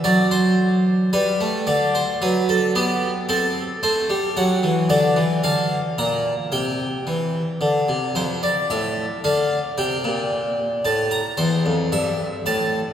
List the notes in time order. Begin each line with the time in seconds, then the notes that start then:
0.04 F#3 D5
0.31 C5
1.13 G3 B4
1.40 A3
1.67 D3 D5
1.95 C5
2.22 F#3 B4
2.49 A4
2.75 B3 G4
3.29 C4 A4
3.83 A3 C5
4.10 G3
4.37 F#3 F#5
4.63 E3
4.90 D3 D5
5.16 E3
5.44 D3 F5
5.98 A#2 A#5
6.52 C3 G5
7.07 E3
7.61 D3
7.88 C3
8.15 F2 C5
8.43 D5
8.70 A2 E5
9.24 D3 F5
9.78 C3 G5
10.04 A#2
10.85 A2 A5
11.11 A#5
11.37 E2 C5
11.66 F2
11.92 G2 E5
12.46 A2 A5